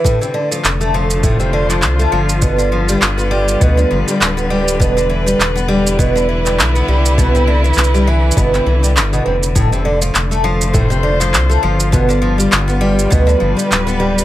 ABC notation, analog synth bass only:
X:1
M:4/4
L:1/8
Q:"Swing 16ths" 1/4=101
K:Flyd
V:1 name="Analog synth bass" clef=bass
z2 F,,,4 C,, G,,,- | G,,,2 G,,,2 D,, G,,, D,,,2 | E,,,2 E,,,4 B,,, C,,- | C,,2 C,,2 G,,, C,, G,,, F,,,- |
F,,,2 F,,,4 C,, G,,,- | G,,,2 G,,,2 D,, G,,, D,,,2 |]